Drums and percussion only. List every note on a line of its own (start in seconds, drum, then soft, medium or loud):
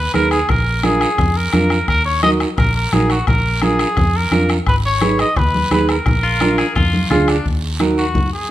0.14 bombo rim medium
0.14 high conga medium
0.14 short guiro medium
0.31 bombo rim medium
0.31 short guiro medium
0.49 bombo low medium
0.49 bombo rim medium
0.49 low conga medium
0.49 long guiro medium
0.83 bombo rim medium
0.83 high conga medium
0.83 short guiro medium
1.01 bombo rim medium
1.01 short guiro medium
1.18 bombo low medium
1.18 bombo rim medium
1.18 low conga medium
1.18 long guiro medium
1.53 bombo rim medium
1.53 high conga medium
1.53 short guiro medium
1.70 bombo rim medium
1.70 short guiro medium
1.88 bombo low medium
1.88 bombo rim medium
1.88 long guiro medium
2.23 bombo rim medium
2.23 high conga medium
2.23 short guiro medium
2.40 bombo rim medium
2.40 short guiro medium
2.58 bombo low medium
2.58 bombo rim medium
2.58 low conga medium
2.58 long guiro medium
2.93 bombo rim medium
2.93 high conga medium
2.93 short guiro medium
3.10 bombo rim medium
3.10 short guiro medium
3.27 bombo low medium
3.27 bombo rim medium
3.27 low conga medium
3.27 long guiro medium
3.62 bombo rim medium
3.62 high conga medium
3.62 short guiro medium
3.79 bombo rim medium
3.79 short guiro medium
3.97 bombo low medium
3.97 bombo rim medium
3.97 low conga medium
3.97 long guiro medium
4.32 bombo rim medium
4.32 high conga medium
4.32 short guiro medium
4.49 bombo rim medium
4.49 short guiro medium
4.67 bombo low medium
4.67 bombo rim medium
4.67 long guiro medium
5.01 bombo rim medium
5.01 high conga medium
5.01 short guiro medium
5.19 bombo rim medium
5.19 short guiro medium
5.36 bombo low medium
5.36 bombo rim medium
5.36 low conga medium
5.36 long guiro medium
5.54 high conga medium
5.71 bombo rim medium
5.71 high conga medium
5.71 short guiro medium
5.89 bombo rim medium
5.89 short guiro medium
6.06 bombo low medium
6.06 bombo rim medium
6.06 low conga medium
6.06 long guiro medium
6.41 bombo rim medium
6.41 high conga medium
6.41 short guiro medium
6.58 bombo rim medium
6.58 short guiro medium
6.76 bombo low medium
6.76 bombo rim medium
6.76 low conga medium
6.76 long guiro medium
6.94 high conga medium
7.11 bombo rim medium
7.11 high conga medium
7.11 low conga medium
7.11 short guiro medium
7.28 bombo rim medium
7.28 short guiro medium
7.46 bombo low medium
7.46 long guiro medium
7.80 bombo rim medium
7.80 high conga medium
7.80 short guiro medium
7.98 short guiro medium
8.15 bombo low medium
8.15 high conga medium
8.15 low conga medium
8.15 long guiro medium